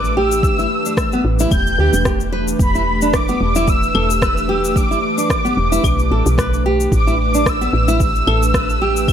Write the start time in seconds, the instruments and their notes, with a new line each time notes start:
Already playing: fm bass A1, analog synth pad E3 A3 D4 G4 B4, nylon-string guitar B4, soft synth lead D6
0.05 cabasa
0.17 nylon-string guitar G4, soft synth lead E6
0.32 cabasa
0.43 kick, cabasa
0.59 nylon-string guitar E4, cabasa
0.86 nylon-string guitar D4, cabasa
0.97 kick, cross-stick, cabasa
1.13 nylon-string guitar B3, cabasa
1.25 fm bass A1
1.39 nylon-string guitar E4, cabasa
1.51 fm bass E1, soft synth lead G6, kick, cabasa, claves
1.67 cabasa
1.78 fm bass D2, nylon-string guitar G4
1.93 fm bass E1, cabasa
2.05 nylon-string guitar G4, kick, cross-stick, cabasa
2.20 cabasa
2.32 nylon-string guitar B4
2.48 cabasa
2.59 fm bass E1, soft synth lead B5, kick, cabasa
2.75 nylon-string guitar E4, cabasa
3.02 nylon-string guitar D4, cabasa
3.13 soft synth lead D6, kick, cross-stick, cabasa
3.29 nylon-string guitar B3, cabasa
3.41 fm bass E1, soft synth lead D6
3.55 nylon-string guitar E4, cabasa
3.68 soft synth lead E6, kick, cabasa
3.83 cabasa
3.95 fm bass E1, nylon-string guitar A4, claves
4.10 cabasa
4.22 nylon-string guitar B4, kick, cross-stick, cabasa
4.37 cabasa
4.49 nylon-string guitar G4
4.65 cabasa
4.76 soft synth lead D6, kick, cabasa
4.91 nylon-string guitar E4, cabasa
5.18 nylon-string guitar D4, cabasa
5.30 kick, cross-stick, cabasa
5.45 nylon-string guitar B3, cabasa
5.57 fm bass E1
5.72 nylon-string guitar E4, cabasa
5.84 fm bass B1, kick, cabasa, claves
5.99 cabasa
6.11 fm bass A1, nylon-string guitar A4
6.26 fm bass B1, cabasa
6.38 nylon-string guitar B4, kick, cross-stick, cabasa
6.54 cabasa
6.66 nylon-string guitar G4
6.80 cabasa
6.92 fm bass A1, soft synth lead D6, kick, cabasa
7.07 nylon-string guitar E4, cabasa
7.20 soft synth lead D6
7.34 nylon-string guitar D4, cabasa
7.46 soft synth lead E6, kick, cross-stick, cabasa
7.61 nylon-string guitar B3, cabasa
7.73 fm bass A1
7.88 nylon-string guitar E4, cabasa
8.00 soft synth lead E6, kick, cabasa
8.15 cabasa
8.27 fm bass A1, nylon-string guitar A4, claves
8.43 cabasa
8.54 nylon-string guitar B4, kick, cross-stick, cabasa
8.70 cabasa
8.82 nylon-string guitar G4
8.97 cabasa
9.08 kick, cabasa, claves